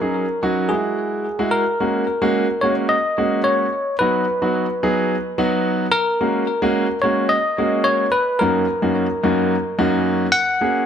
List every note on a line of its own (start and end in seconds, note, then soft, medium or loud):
0.00 0.25 F#3 medium
0.00 0.25 C#4 medium
0.00 0.25 D#4 medium
0.00 0.25 G#4 medium
0.00 0.73 A#4 medium
0.43 0.70 F#3 medium
0.43 0.70 C#4 medium
0.43 0.70 D#4 medium
0.43 0.69 F#4 loud
0.69 1.25 G#3 medium
0.69 1.25 E4 medium
0.69 1.25 F#4 medium
0.69 1.48 G#4 medium
1.39 1.63 G#3 medium
1.39 1.63 E4 medium
1.39 1.63 F#4 loud
1.51 2.65 A#4 medium
1.80 2.04 G#3 medium
1.80 2.04 A#3 medium
1.80 2.04 C#4 medium
1.80 2.04 F#4 medium
2.22 2.45 G#3 medium
2.22 2.45 A#3 medium
2.22 2.45 C#4 medium
2.22 2.45 F#4 loud
2.61 2.94 G#3 medium
2.61 2.94 A#3 medium
2.61 2.94 C#4 medium
2.61 2.94 F#4 medium
2.61 2.74 C#5 medium
2.89 3.41 D#5 medium
3.18 3.65 G#3 medium
3.18 3.65 A#3 medium
3.18 3.65 C#4 medium
3.18 3.65 F#4 medium
3.44 3.96 C#5 medium
3.99 4.24 F#3 medium
3.99 4.24 B3 medium
3.99 4.24 D#4 medium
3.99 4.24 F#4 medium
3.99 5.98 B4 medium
4.42 4.65 F#3 medium
4.42 4.65 B3 medium
4.42 4.65 D#4 medium
4.42 4.65 F#4 medium
4.83 5.14 F#3 medium
4.83 5.14 B3 medium
4.83 5.14 D#4 medium
4.83 5.14 G#4 loud
5.38 5.85 F#3 loud
5.38 5.85 B3 medium
5.38 5.85 D#4 medium
5.38 5.85 F#4 loud
5.92 6.98 A#4 loud
6.21 6.44 G#3 medium
6.21 6.44 A#3 medium
6.21 6.44 C#4 medium
6.21 6.44 F#4 medium
6.62 6.86 G#3 loud
6.62 6.86 A#3 medium
6.62 6.86 C#4 medium
6.62 6.86 F#4 loud
7.02 7.35 G#3 medium
7.02 7.35 A#3 medium
7.02 7.35 C#4 medium
7.02 7.35 F#4 medium
7.02 7.31 C#5 medium
7.29 7.87 D#5 loud
7.58 8.05 G#3 medium
7.58 8.05 A#3 medium
7.58 8.05 C#4 medium
7.58 8.05 F#4 medium
7.84 8.11 C#5 loud
8.12 8.41 B4 loud
8.39 8.64 F#2 medium
8.39 8.64 A#3 medium
8.39 8.64 C#4 medium
8.39 8.64 D#4 medium
8.39 8.64 F#4 medium
8.39 10.39 A#4 medium
8.82 9.06 F#2 medium
8.82 9.06 A#3 medium
8.82 9.06 C#4 medium
8.82 9.06 D#4 medium
8.82 9.06 F#4 medium
9.23 9.55 F#2 medium
9.23 9.55 A#3 medium
9.23 9.55 C#4 medium
9.23 9.55 D#4 medium
9.23 9.55 F#4 loud
9.79 10.26 F#2 loud
9.79 10.26 A#3 medium
9.79 10.26 C#4 medium
9.79 10.26 D#4 medium
9.79 10.26 F#4 loud
10.32 10.86 F#5 loud
10.61 10.85 A#3 medium
10.61 10.85 C#4 medium
10.61 10.85 F#4 medium
10.61 10.85 G#4 medium